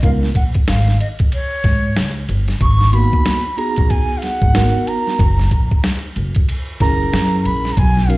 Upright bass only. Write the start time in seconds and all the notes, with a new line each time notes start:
0.03 C#2
0.35 A#1
0.69 G#1
1.64 G#2
1.97 C#2
2.29 G1
2.61 G#1
3.78 A#1
4.42 G#1
5.20 F#1
5.52 A#1
6.16 F#1
6.81 F#1
7.13 F#2
7.46 A#1
7.78 B1